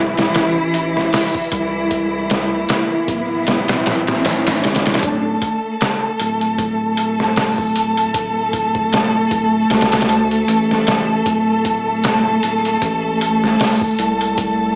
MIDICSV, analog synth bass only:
0, 0, Header, 1, 2, 480
1, 0, Start_track
1, 0, Tempo, 779221
1, 1177, Time_signature, 4, 2, 24, 8
1, 9088, End_track
2, 0, Start_track
2, 0, Title_t, "Analog synth bass"
2, 0, Program_c, 0, 38
2, 0, Note_on_c, 0, 26, 86
2, 192, Note_off_c, 0, 26, 0
2, 219, Note_on_c, 0, 33, 77
2, 677, Note_off_c, 0, 33, 0
2, 938, Note_on_c, 0, 36, 83
2, 1637, Note_off_c, 0, 36, 0
2, 1897, Note_on_c, 0, 26, 86
2, 2136, Note_off_c, 0, 26, 0
2, 2139, Note_on_c, 0, 26, 80
2, 2861, Note_on_c, 0, 31, 91
2, 2871, Note_off_c, 0, 26, 0
2, 3073, Note_off_c, 0, 31, 0
2, 3098, Note_on_c, 0, 26, 104
2, 3312, Note_off_c, 0, 26, 0
2, 3820, Note_on_c, 0, 26, 85
2, 5718, Note_off_c, 0, 26, 0
2, 5737, Note_on_c, 0, 26, 89
2, 5951, Note_off_c, 0, 26, 0
2, 5976, Note_on_c, 0, 38, 97
2, 6436, Note_off_c, 0, 38, 0
2, 6456, Note_on_c, 0, 33, 91
2, 6916, Note_off_c, 0, 33, 0
2, 6937, Note_on_c, 0, 26, 88
2, 7636, Note_off_c, 0, 26, 0
2, 7659, Note_on_c, 0, 26, 87
2, 7872, Note_off_c, 0, 26, 0
2, 7897, Note_on_c, 0, 33, 77
2, 8356, Note_off_c, 0, 33, 0
2, 8618, Note_on_c, 0, 36, 79
2, 9088, Note_off_c, 0, 36, 0
2, 9088, End_track
0, 0, End_of_file